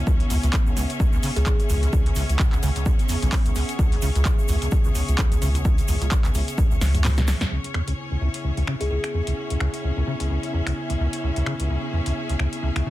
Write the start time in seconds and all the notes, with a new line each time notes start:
Already playing: C#3 B3 C#4 G#4 C#5 E5
0.07 C#2 G#4, kick, shaker
0.20 closed hi-hat
0.30 C#2 E2, open hi-hat, shaker
0.43 C#2, closed hi-hat, shaker
0.53 kick, clap, shaker
0.67 C#2, shaker
0.77 C#2, open hi-hat, shaker
0.90 closed hi-hat, shaker
1.00 C#2, kick, shaker
1.13 C#2, shaker
1.23 C#3, open hi-hat, shaker
1.36 C#2 G#4, closed hi-hat, shaker
1.46 C#2 G#4, kick, clap, shaker
1.60 closed hi-hat, shaker
1.70 C#2 E2, open hi-hat, shaker
1.83 C#2, closed hi-hat, shaker
1.93 C#2, kick, shaker
2.06 C#2, closed hi-hat
2.15 C#2, open hi-hat, shaker
2.29 C#2, closed hi-hat, shaker
2.39 C#2, kick, clap, shaker
2.53 C#2, clap, shaker
2.63 C#2 C#3, open hi-hat, shaker
2.76 C#2, closed hi-hat, shaker
2.85 kick, shaker
2.99 closed hi-hat, shaker
3.09 E2, open hi-hat, shaker
3.22 B1 C#2, closed hi-hat, shaker
3.32 kick, clap, open hi-hat, shaker
3.45 C#2, closed hi-hat, shaker
3.55 C#2, open hi-hat, shaker
3.69 closed hi-hat, shaker
3.79 C#2, kick, shaker
3.92 C#2, closed hi-hat
4.02 C#2 C#3, open hi-hat, shaker
4.15 C#2, closed hi-hat, shaker
4.25 kick, clap, shaker
4.39 shaker
4.48 C#2 E2, open hi-hat, shaker
4.62 C#2, closed hi-hat, shaker
4.71 kick, shaker
4.84 C#2, shaker
4.95 C#2, open hi-hat, shaker
5.08 C#2, closed hi-hat, shaker
5.18 C#2, kick, clap, shaker
5.32 C#2, closed hi-hat, shaker
5.42 C#2 C#3, open hi-hat, shaker
5.55 C#2, closed hi-hat, shaker
5.65 C#2, kick, shaker
5.78 closed hi-hat, shaker
5.88 C#2 E2, open hi-hat, shaker
6.01 C#2, closed hi-hat, shaker
6.11 kick, clap, shaker
6.24 C#2, clap, closed hi-hat, shaker
6.34 C#2, open hi-hat, shaker
6.48 closed hi-hat, shaker
6.58 C#2, kick, shaker
6.71 C#2, shaker
6.81 C#2, snare, open hi-hat, shaker
6.94 E2, closed hi-hat, shaker
7.04 G#2, snare, clap, open hi-hat, shaker
7.17 B2, snare, closed hi-hat, shaker
7.28 C#2, snare, open hi-hat, shaker
7.41 E2, snare, closed hi-hat, shaker
7.51 C#2 C#3 B3 C#4 E4
7.64 closed hi-hat
7.74 E2, finger snap
7.80 G#4
7.88 C#2, closed hi-hat
8.11 C#2
8.19 C#2 E5
8.34 closed hi-hat
8.44 C#2
8.57 C#2, closed hi-hat
8.67 C#3, finger snap
8.81 C#2 G#4, closed hi-hat
8.91 C#2 G#4
9.04 finger snap, closed hi-hat
9.14 E2
9.27 C#2, closed hi-hat
9.50 C#2, closed hi-hat
9.60 C#2, finger snap
9.74 closed hi-hat
9.84 C#2
9.97 C#2
10.07 C#3
10.20 C#2, closed hi-hat
10.30 C#2
10.43 closed hi-hat
10.53 E2
10.67 C#2, finger snap, closed hi-hat
10.90 C#2, closed hi-hat
11.00 C#2
11.13 closed hi-hat
11.23 C#2
11.36 C#2, closed hi-hat
11.46 C#3, finger snap
11.60 C#2, closed hi-hat
11.70 C#2
11.93 E2
12.06 C#2, closed hi-hat
12.29 C#2, closed hi-hat
12.39 C#2, finger snap
12.53 closed hi-hat
12.63 C#2
12.76 C#2, finger snap, closed hi-hat
12.86 C#3